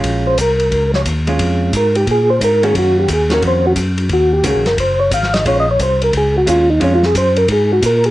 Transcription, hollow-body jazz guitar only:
X:1
M:4/4
L:1/8
Q:"Swing" 1/4=177
K:Bbm
V:1 name="Hollow-body jazz guitar"
[A,DF]2 z4 z [A,DF]- | [A,DF]2 z4 z [E,B,DG]- | [E,B,DG]2 z [E,B,DG]3 z2 | z2 [E,B,DG] z4 z |
[A,DF] z4 z [A,DF] z | [A,DF] z6 z |]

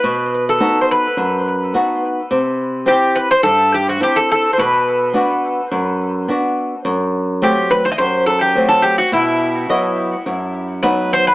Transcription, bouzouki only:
X:1
M:4/4
L:1/16
Q:1/4=106
K:Bphr
V:1 name="Bouzouki"
B3 A2- A/2 c/2 B8 z2 | z4 G2 B c A2 G F G A A3/2 c/2 | B8 z8 | z4 G2 B c/2 ^d/2 c2 A G2 A G F |
E12 B2 c B |]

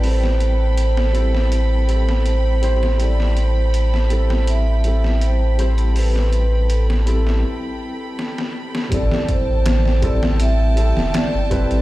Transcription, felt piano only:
X:1
M:4/4
L:1/8
Q:1/4=81
K:Am
V:1 name="Felt piano"
[G,CEA]3 [G,CEA]2 [G,CEA]2 [G,CEc] | [G,CEA]3 [G,CEA]2 [G,CEA]2 [G,CEc] | [G,CEA]3 [G,CEA] z4 | [G,CEA]3 [G,CEA]2 [G,CEA]2 [G,CEB] |]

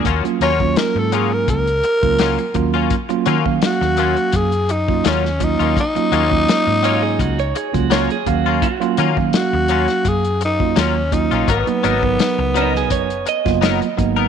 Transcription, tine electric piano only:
X:1
M:4/4
L:1/16
Q:"Swing 16ths" 1/4=84
K:Ebm
V:1 name="Tine electric piano"
z [G,B,DF] z [G,B,DF]6 z2 [G,B,DF]2 z [G,B,DF]2 | z [G,B,DF] z [G,B,Df]6 z2 [G,B,DF]2 z [G,B,DF]2 | z [G,B,DF] z [G,B,DF]6 z2 [G,B,DF]2 z [G,B,Df]2 | z [G,B,DF] z [G,B,Df]6 z2 [G,B,DF]2 z [G,B,DF]2 |
z [G,B,CE] z [G,CEB]6 z2 [G,B,CF]2 z [G,B,CE]2 |]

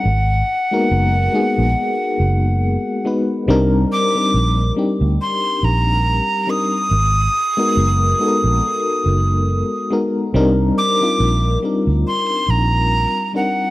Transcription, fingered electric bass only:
X:1
M:4/4
L:1/16
Q:"Swing 16ths" 1/4=70
K:Ablyd
V:1 name="Fingered electric bass" clef=bass
A,,,2 z2 _G,,,2 z B,,, z2 G,,,3 z3 | C,,2 z2 B,,,2 z D,, z2 B,,,3 z3 | A,,,2 z2 _G,,,2 z B,,, z2 G,,,3 z3 | C,,2 z2 B,,,2 z D,, z2 B,,,3 z3 |]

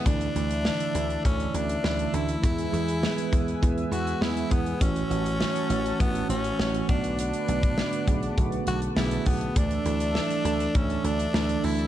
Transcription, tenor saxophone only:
X:1
M:4/4
L:1/8
Q:1/4=101
K:Dlyd
V:1 name="Tenor saxophone"
D4 C D2 E | E4 z F E B, | C4 B, C2 D | D4 z F E B, |
D4 C D2 E |]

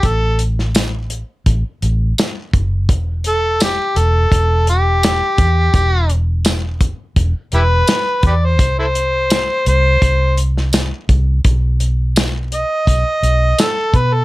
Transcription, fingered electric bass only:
X:1
M:4/4
L:1/16
Q:1/4=84
K:Em
V:1 name="Fingered electric bass" clef=bass
A,,,8 A,,, z A,,,2 z2 F,,,2 | E,,,6 E,,,2 E,,,6 E,,2 | E,,,8 E,,, z E,,,2 z2 E,,2 | C,,6 C,,2 C,,6 C,,2 |
B,,,8 B,,, z B,,,2 z2 B,,2 |]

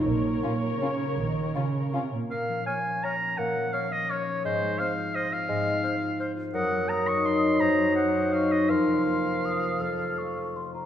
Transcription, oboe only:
X:1
M:3/4
L:1/8
Q:1/4=165
K:Bbm
V:1 name="Oboe"
z6 | z6 | f2 a2 b2 | g2 f e d2 |
c2 f2 e f- | f4- f z | g2 b d' c'2 | b2 g2 f e |
f6- | f4 z2 |]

